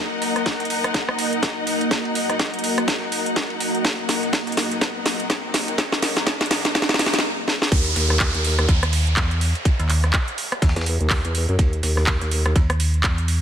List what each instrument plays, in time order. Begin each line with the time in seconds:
Already playing: ambient pad A#3 F#4 D#5, string section D#4 A#4 D#5 F#5, riser
0.22 snare, open hi-hat, ride
0.36 cross-stick, snare, closed hi-hat
0.46 kick, snare, closed hi-hat, open hi-hat
0.60 snare, closed hi-hat
0.65 closed hi-hat
0.70 open hi-hat, ride
0.84 cross-stick, snare, closed hi-hat
0.94 kick, snare, closed hi-hat, ride
1.09 cross-stick
1.18 open hi-hat, ride
1.33 closed hi-hat
1.43 kick, snare, closed hi-hat, ride
1.67 open hi-hat, ride
1.81 closed hi-hat, ride
1.91 kick, snare, closed hi-hat, ride
2.05 ride
2.15 open hi-hat, ride
2.29 cross-stick, snare, closed hi-hat
2.39 kick, snare, closed hi-hat, ride
2.54 closed hi-hat
2.59 closed hi-hat
2.64 open hi-hat, ride
2.78 cross-stick, closed hi-hat, ride
2.88 kick, snare, closed hi-hat, ride
3.02 snare
3.12 open hi-hat, ride
3.26 closed hi-hat
3.36 kick, snare, closed hi-hat, ride
3.50 ride
3.60 open hi-hat, ride
3.75 closed hi-hat
3.85 kick, snare, closed hi-hat, ride
4.09 snare, open hi-hat, ride
4.23 snare, closed hi-hat
4.33 kick, snare, closed hi-hat, open hi-hat
4.47 snare, closed hi-hat
4.52 closed hi-hat
4.57 snare, open hi-hat, ride
4.71 snare, closed hi-hat
4.81 kick, snare, closed hi-hat, ride
5.06 snare, open hi-hat, ride
5.20 closed hi-hat
5.30 kick, snare, closed hi-hat, ride
5.54 snare, open hi-hat, ride
5.68 closed hi-hat, ride
5.78 kick, snare, closed hi-hat, ride
5.92 snare, ride
6.02 snare, open hi-hat, ride
6.16 snare, closed hi-hat
6.27 kick, snare, closed hi-hat, ride
6.41 snare, closed hi-hat
6.46 closed hi-hat
6.51 snare, open hi-hat, ride
6.65 snare, closed hi-hat, ride
6.75 kick, snare, closed hi-hat, ride
6.82 snare
6.89 snare
6.94 snare
6.99 snare, open hi-hat, ride
7.06 snare
7.13 snare, closed hi-hat
7.18 snare
7.48 snare
7.62 snare
7.72 wobble bass D#2, kick, closed hi-hat, crash, ride, downlifter
7.86 closed hi-hat
7.96 wobble bass D#2, snare, open hi-hat, ride
8.10 cross-stick, snare
8.20 kick, snare, clap, closed hi-hat, open hi-hat
8.34 wobble bass D#2, snare, closed hi-hat
8.44 open hi-hat, ride
8.59 cross-stick, snare, closed hi-hat
8.69 fm bass D#2, kick, closed hi-hat, ride
8.83 cross-stick, closed hi-hat
8.93 open hi-hat, ride
9.07 closed hi-hat
9.16 fm bass E2, kick, snare, clap, closed hi-hat, ride
9.31 closed hi-hat
9.41 open hi-hat, ride
9.55 closed hi-hat, ride
9.65 kick, closed hi-hat, ride
9.79 fm bass D#2, closed hi-hat, ride
9.89 clap, open hi-hat, ride
10.04 cross-stick, snare, closed hi-hat
10.13 kick, snare, clap, closed hi-hat, ride
10.28 closed hi-hat
10.38 open hi-hat, ride
10.52 cross-stick, closed hi-hat, ride
10.62 fm bass D#2, kick, snare, closed hi-hat, open hi-hat
10.69 snare, open hi-hat
10.76 wobble bass E2, snare, closed hi-hat, open hi-hat
10.81 snare, open hi-hat
10.86 open hi-hat, ride
11.00 wobble bass D#2, closed hi-hat
11.10 kick, snare, clap, open hi-hat, ride
11.25 wobble bass E2, closed hi-hat, ride
11.35 open hi-hat, ride
11.49 wobble bass F#2, closed hi-hat
11.59 wobble bass D#2, kick, closed hi-hat, ride
11.73 closed hi-hat
11.83 wobble bass D#2, snare, open hi-hat, ride
11.97 cross-stick, snare
12.07 kick, snare, clap, closed hi-hat, open hi-hat
12.21 wobble bass D#2, snare, closed hi-hat
12.31 open hi-hat, ride
12.46 cross-stick, snare, closed hi-hat
12.56 fm bass D#2, kick, closed hi-hat, ride
12.70 cross-stick, closed hi-hat
12.80 open hi-hat, ride
12.94 closed hi-hat
13.03 fm bass E2, kick, snare, clap, closed hi-hat, ride
13.18 closed hi-hat
13.28 open hi-hat, ride